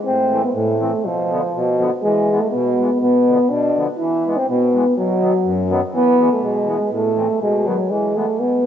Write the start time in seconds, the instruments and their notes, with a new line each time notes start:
0.06 accordion A2, euphonium C4
0.30 accordion E3 A3 C4
0.44 euphonium B3
0.54 accordion A2, euphonium A3
0.80 accordion E3 A3 C4
1.03 accordion B2, euphonium F3
1.31 accordion D3 F3 B3
1.55 accordion B2
1.79 accordion D3 F3 B3
2.02 accordion E3, euphonium G#3
2.30 accordion E3 G#3 B3
2.39 euphonium A3
2.50 euphonium B3
2.54 accordion B2
2.80 accordion E3 G#3 B3
3.00 accordion B2, euphonium B3
3.28 accordion D3 F3 B3
3.49 accordion B2, euphonium D4
3.76 accordion D3 F3 B3
3.97 accordion E3, euphonium E4
4.25 accordion E3 G#3 B3
4.36 euphonium C4
4.49 accordion B2, euphonium B3
4.74 accordion E3 G#3 B3
4.96 accordion B2, euphonium F#3
5.20 accordion D#3 F#3 B3
5.44 accordion F#2
5.70 accordion D#3 F#3 B3
5.92 accordion E3, euphonium B3
6.18 accordion E3 G#3 B3
6.32 euphonium A3
6.42 accordion B2, euphonium G#3
6.65 accordion E3 G#3 B3
6.90 accordion A2, euphonium A3
7.16 accordion E3 A3 C4
7.40 accordion B2, euphonium G#3
7.65 accordion D#3 F#3 B3, euphonium F#3
7.89 accordion E3, euphonium G#3
8.15 accordion E3 G#3 B3, euphonium A3
8.38 accordion B2, euphonium B3
8.63 accordion E3